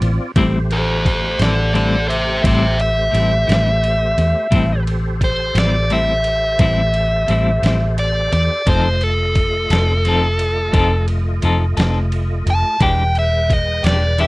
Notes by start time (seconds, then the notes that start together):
Already playing: C4 F4 D5
0.01 A1, ride
0.36 A1 A2 G3 A3 C4 E4 G4 C5, kick, ride
0.71 A4 C5, ride
1.05 A4 C5, kick, ride
1.39 A1 G3 C4 E4 A4 D5, snare, ride
1.74 A2 G3 C4 E4 A4 D5, ride
2.08 C5 E5, ride
2.43 A1 A2 G3 C4 E4 C5, kick, ride
2.47 E5, snare
2.80 E5, ride
3.11 A1 A2 G3 C4 E4, ride
3.47 A1 G3 C4 E4, ride
3.52 snare
3.84 ride
4.18 E2, ride
4.51 A1 A2 G3 C4 E4 G4 A4 C5, kick, ride
4.87 ride
5.21 C5, kick, ride
5.55 A1 G3 C4 E4 D5, snare, ride
5.90 A2 G3 C4 E4 E5, ride
6.24 ride
6.59 A1 A2 G3 C4 E4, kick, ride
6.94 ride
7.28 A1 A2 G3 C4 E4, ride
7.63 A1 G3 C4 E4, snare, ride
7.98 D5, ride
8.32 E2 D5, ride
8.66 F1 F3 A3 C4 D#4 F4 A4 C5 D#5, kick, ride
9.01 A4, ride
9.35 kick, ride
9.70 F1 C4 D#4 A4, snare, ride
10.05 F3 C4 D#4 A4, ride
10.39 ride
10.72 F1 F3 C4 D#4 A4, kick, ride
11.08 ride
11.42 F1 F3 C4 D#4 A4, ride
11.77 F1 C4 D#4 A4, snare, ride
12.12 ride
12.46 F1, ride
12.50 A5
12.79 E1 E3 G#3 D4 G4 B4 G5, kick, ride
13.15 E5, ride
13.50 D#5, kick, ride
13.83 E1 G#3 D4 G4 D5, snare, ride
14.18 E3 G#3 D4 G4 E5, ride